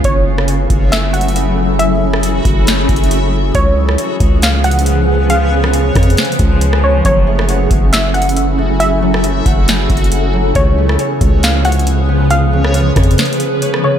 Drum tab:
HH |x-----------x-----x-----x-----x-x-x-x-----------|x-----------x-----x-----x-----x-x-x-x-----------|x-----------x-----x-----x-----x-x-x-x-----------|x-----------x-----x-x-x-x-x-x-x-----x-----------|
SD |---------r--------------o-----------------------|---------r--------------o-----------------------|---------r--------------o-----------------------|---------r--------r-----o--------------r--------|
BD |o-----------------o-----------------------------|------------------o-----------o-----------------|o-----------------o-----------------------------|------------------o-----------o-----------------|

HH |x-----------x-----x-----x-----x-x-x-x-----------|x-----------x-----x-----x-----x-x-x-x-----------|x-----------x-----x-----x-----x-x-x-x-----------|x-----------x-----x-x-x-x-x-x-x-----x-----------|
SD |---------r--------------o-----------------------|---------r--------------o-----------------------|---------r--------------o-----------------------|---------r--------r-----o--------------r--------|
BD |o-----------------o-----------------------------|------------------o-----------o-----------------|o-----------------o-----------------------------|------------------o-----------------------------|